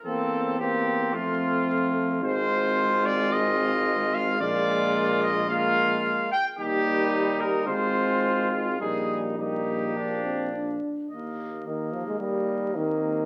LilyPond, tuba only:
\new Staff \with { instrumentName = "Tuba" } { \clef bass \time 4/4 \key f \mixolydian \tempo 4 = 109 e,2 f,2 | \key ees \major aes,,1 | bes,,2.~ bes,,8 r8 | ees,2 aes,,2 |
bes,,2.~ bes,,8 r8 | ees,1 | }